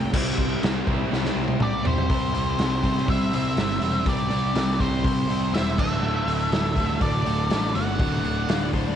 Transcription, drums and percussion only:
0.14 kick, crash
0.38 kick
0.63 snare, crash
0.87 kick
1.13 snare
1.25 snare
1.48 high tom
1.60 mid tom
1.85 floor tom
1.98 floor tom
2.10 kick, open hi-hat
2.34 open hi-hat
2.59 snare, open hi-hat
2.84 kick, open hi-hat
2.97 snare
3.08 kick, open hi-hat
3.33 open hi-hat
3.57 snare, open hi-hat
3.81 open hi-hat
4.06 kick, open hi-hat
4.30 open hi-hat
4.55 snare, open hi-hat
4.80 kick, open hi-hat
5.04 kick, open hi-hat
5.30 open hi-hat
5.54 snare, open hi-hat
5.78 kick, crash
6.28 open hi-hat
6.52 snare, open hi-hat
6.76 kick, open hi-hat
7.01 kick, open hi-hat
7.26 open hi-hat
7.50 snare, open hi-hat
7.75 open hi-hat
7.99 kick, open hi-hat
8.24 open hi-hat
8.49 snare, open hi-hat
8.73 kick, open hi-hat

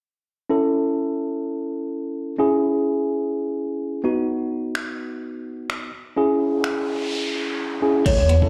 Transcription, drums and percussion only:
4.75 finger snap
5.70 finger snap
6.64 finger snap
8.06 kick, closed hi-hat, crash
8.29 closed hi-hat
8.42 kick

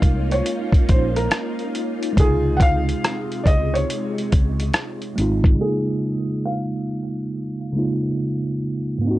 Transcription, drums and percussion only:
0.02 kick, closed hi-hat
0.31 closed hi-hat
0.46 closed hi-hat
0.72 kick, closed hi-hat
0.89 kick, closed hi-hat
1.16 closed hi-hat
1.31 cross-stick, closed hi-hat
1.59 closed hi-hat
1.75 closed hi-hat
2.03 closed hi-hat
2.17 kick, closed hi-hat
2.60 kick, closed hi-hat
2.89 closed hi-hat
3.04 cross-stick, closed hi-hat
3.32 closed hi-hat
3.46 kick, closed hi-hat
3.75 closed hi-hat
3.90 closed hi-hat
4.18 closed hi-hat
4.32 kick, closed hi-hat
4.60 closed hi-hat
4.74 cross-stick, closed hi-hat
5.02 closed hi-hat
5.18 closed hi-hat
5.44 kick, closed hi-hat

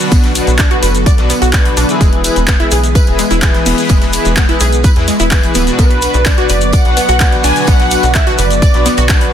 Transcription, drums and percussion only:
0.00 closed hi-hat, maracas
0.11 kick, closed hi-hat, tambourine, maracas
0.24 snare, closed hi-hat
0.35 open hi-hat, tambourine, maracas
0.47 closed hi-hat, maracas
0.59 kick, snare, clap, closed hi-hat, tambourine, maracas
0.71 closed hi-hat
0.83 open hi-hat, tambourine, maracas
0.95 closed hi-hat, maracas
1.06 kick, closed hi-hat, tambourine, maracas
1.18 snare, closed hi-hat
1.30 snare, open hi-hat, tambourine, maracas
1.42 closed hi-hat, maracas
1.53 kick, snare, clap, closed hi-hat, tambourine, maracas
1.65 closed hi-hat
1.77 open hi-hat, tambourine, maracas
1.89 closed hi-hat, maracas
2.01 kick, closed hi-hat, tambourine, maracas
2.13 closed hi-hat
2.24 open hi-hat, tambourine, maracas
2.36 closed hi-hat, maracas
2.48 kick, snare, clap, closed hi-hat, tambourine, maracas
2.60 closed hi-hat
2.71 open hi-hat, tambourine, maracas
2.84 closed hi-hat, maracas
2.95 kick, closed hi-hat, tambourine, maracas
3.07 closed hi-hat
3.19 snare, open hi-hat, tambourine, maracas
3.30 closed hi-hat, maracas
3.42 kick, snare, clap, closed hi-hat, tambourine, maracas
3.54 snare, closed hi-hat
3.66 open hi-hat, maracas
3.78 closed hi-hat, maracas
3.89 kick, closed hi-hat, tambourine, maracas
4.02 snare, closed hi-hat
4.13 open hi-hat, tambourine, maracas
4.25 closed hi-hat, maracas
4.37 kick, snare, clap, closed hi-hat, tambourine, maracas
4.49 closed hi-hat
4.60 open hi-hat, tambourine, maracas
4.73 closed hi-hat, maracas
4.84 kick, closed hi-hat, tambourine, maracas
4.96 snare, closed hi-hat
5.08 snare, open hi-hat, tambourine, maracas
5.19 closed hi-hat, maracas
5.31 kick, snare, clap, closed hi-hat, tambourine, maracas
5.43 closed hi-hat
5.55 open hi-hat, tambourine, maracas
5.67 closed hi-hat, maracas
5.79 kick, closed hi-hat, tambourine, maracas
5.91 closed hi-hat
6.02 open hi-hat, tambourine, maracas
6.14 closed hi-hat, maracas
6.25 kick, snare, clap, closed hi-hat, tambourine, maracas
6.38 closed hi-hat
6.49 open hi-hat, tambourine, maracas
6.61 closed hi-hat, maracas
6.73 kick, closed hi-hat, tambourine, maracas
6.85 closed hi-hat
6.97 snare, open hi-hat, tambourine, maracas
7.08 closed hi-hat, maracas
7.20 kick, snare, clap, closed hi-hat, tambourine, maracas
7.32 snare, closed hi-hat
7.44 open hi-hat, maracas
7.56 closed hi-hat, maracas
7.67 kick, closed hi-hat, tambourine, maracas
7.79 snare, closed hi-hat
7.91 open hi-hat, tambourine, maracas
8.03 closed hi-hat, maracas
8.14 kick, snare, clap, closed hi-hat, tambourine, maracas
8.27 closed hi-hat
8.38 open hi-hat, tambourine, maracas
8.51 closed hi-hat, maracas
8.62 kick, closed hi-hat, tambourine, maracas
8.74 snare, closed hi-hat
8.85 snare, open hi-hat, tambourine, maracas
8.97 closed hi-hat, maracas
9.09 kick, snare, clap, closed hi-hat, tambourine, maracas
9.21 closed hi-hat

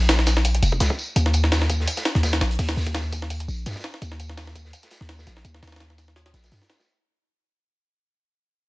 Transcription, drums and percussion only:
0.09 snare, closed hi-hat, tambourine
0.19 snare
0.26 snare, closed hi-hat, tambourine
0.37 snare
0.45 closed hi-hat, tambourine
0.55 closed hi-hat
0.62 closed hi-hat, tambourine
0.72 kick
0.80 snare, closed hi-hat, tambourine
0.90 kick
0.99 tambourine
1.16 kick, closed hi-hat, tambourine
1.26 snare
1.33 closed hi-hat, tambourine
1.44 snare
1.52 snare, closed hi-hat, tambourine
1.62 snare
1.70 kick, closed hi-hat, tambourine
1.80 snare
1.87 closed hi-hat, tambourine
1.97 snare, closed hi-hat
2.05 snare, closed hi-hat, tambourine
2.15 snare, closed hi-hat
2.23 kick, snare, closed hi-hat, tambourine
2.33 snare, closed hi-hat
2.41 snare, closed hi-hat, tambourine
2.51 closed hi-hat
2.59 kick, closed hi-hat, open hi-hat
2.69 snare, closed hi-hat
2.77 snare, tambourine
2.87 kick, closed hi-hat
2.95 snare, closed hi-hat, tambourine
3.13 kick, closed hi-hat, tambourine
3.22 snare
3.30 closed hi-hat, tambourine
3.40 closed hi-hat
3.48 tambourine
3.66 snare, closed hi-hat, tambourine
3.71 snare, tambourine
3.76 kick, snare, tambourine
3.79 snare, tambourine
3.84 snare, closed hi-hat
3.94 snare
4.02 kick, closed hi-hat, tambourine
4.12 snare
4.20 closed hi-hat, tambourine
4.29 snare
4.37 snare, closed hi-hat, tambourine
4.47 snare
4.55 kick, closed hi-hat, tambourine
4.65 snare
4.73 closed hi-hat, tambourine
4.83 snare, closed hi-hat
4.91 snare, open hi-hat, tambourine
5.01 snare
5.09 snare, closed hi-hat, tambourine
5.19 snare, tambourine
5.27 kick, snare, closed hi-hat, tambourine
5.37 snare
5.45 kick, closed hi-hat, tambourine
5.54 snare
5.63 snare, closed hi-hat, tambourine
5.67 snare, closed hi-hat
5.72 snare, closed hi-hat
5.76 snare, closed hi-hat, tambourine
5.80 snare, closed hi-hat
5.90 snare
5.98 snare, closed hi-hat, tambourine
6.08 snare
6.16 snare, closed hi-hat, tambourine
6.26 snare, closed hi-hat
6.34 snare, closed hi-hat, tambourine
6.44 snare, closed hi-hat, tambourine
6.52 snare, open hi-hat, tambourine
6.62 snare, tambourine
6.69 snare, closed hi-hat, tambourine
6.80 snare, tambourine

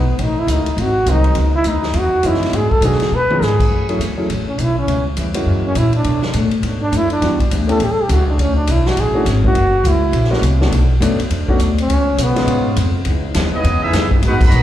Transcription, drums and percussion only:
0.19 ride
0.48 hi-hat pedal, ride
0.66 ride
0.78 ride
1.06 hi-hat pedal, ride
1.24 ride
1.35 ride
1.64 hi-hat pedal, ride
1.83 snare
1.93 ride
2.23 hi-hat pedal, ride
2.34 snare
2.43 snare, ride
2.53 ride
2.71 kick
2.82 hi-hat pedal, ride
2.92 snare
3.00 snare, ride
3.30 mid tom
3.42 snare, hi-hat pedal
3.60 kick, crash
3.89 ride
4.01 hi-hat pedal, ride
4.30 ride
4.58 hi-hat pedal, ride
4.88 ride
5.17 hi-hat pedal, ride
5.34 ride
5.75 hi-hat pedal, ride
5.93 ride
6.04 ride
6.22 snare
6.33 hi-hat pedal, ride
6.51 ride
6.63 ride
6.93 hi-hat pedal, ride
7.10 ride
7.22 snare, ride
7.40 kick, ride
7.51 hi-hat pedal, ride
7.69 ride
7.80 ride
8.09 hi-hat pedal, ride
8.39 ride
8.67 hi-hat pedal, ride
8.86 snare
8.97 ride
9.26 snare, hi-hat pedal, ride
9.44 kick
9.55 ride
9.85 hi-hat pedal, ride
10.13 ride
10.24 snare
10.33 snare
10.43 hi-hat pedal, ride
10.62 snare
10.72 ride
11.02 hi-hat pedal, ride
11.20 ride
11.30 ride
11.48 kick
11.59 hi-hat pedal, ride
11.78 ride
11.90 ride
12.18 hi-hat pedal, ride
12.36 snare, ride
12.48 ride
12.76 hi-hat pedal, ride
13.05 ride
13.34 snare, hi-hat pedal, ride
13.64 ride
13.93 snare, hi-hat pedal, ride
14.11 kick
14.22 ride
14.41 kick, crash
14.51 hi-hat pedal

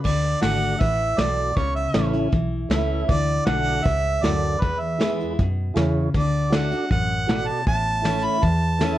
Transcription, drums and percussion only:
0.05 kick, crash
0.42 snare, closed hi-hat
0.62 closed hi-hat
0.80 kick, closed hi-hat
1.18 snare, closed hi-hat
1.56 kick, closed hi-hat
1.94 snare, closed hi-hat
2.14 closed hi-hat
2.32 kick, closed hi-hat
2.71 snare, closed hi-hat
3.09 kick, closed hi-hat
3.47 snare, closed hi-hat
3.66 closed hi-hat
3.85 kick, closed hi-hat
4.24 snare, closed hi-hat
4.62 kick, closed hi-hat
5.00 snare, closed hi-hat
5.20 closed hi-hat
5.39 kick, closed hi-hat
5.77 snare, closed hi-hat
6.14 kick, closed hi-hat
6.53 snare, closed hi-hat
6.72 closed hi-hat
6.91 kick, closed hi-hat
7.29 snare, closed hi-hat
7.67 kick, closed hi-hat
8.05 snare, closed hi-hat
8.24 closed hi-hat
8.42 kick, closed hi-hat
8.81 snare, closed hi-hat

